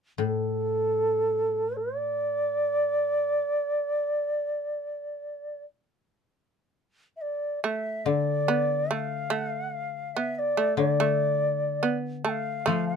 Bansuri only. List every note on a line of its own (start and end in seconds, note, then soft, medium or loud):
0.21 1.78 A4 medium
1.76 5.62 D5 medium
7.16 7.22 E5 soft
7.21 7.60 D5 soft
7.63 8.07 E5 medium
8.06 8.93 D5 medium
8.91 9.36 F5 medium
9.36 9.47 F#5 medium
9.47 10.16 F5 medium
10.15 10.35 E5 medium
10.35 10.77 D5 medium
10.35 10.40 E5 medium
10.77 11.95 D5 medium
12.25 12.30 A5 medium
12.29 12.65 F5 medium
12.69 12.88 F5 medium
12.88 12.96 A5 medium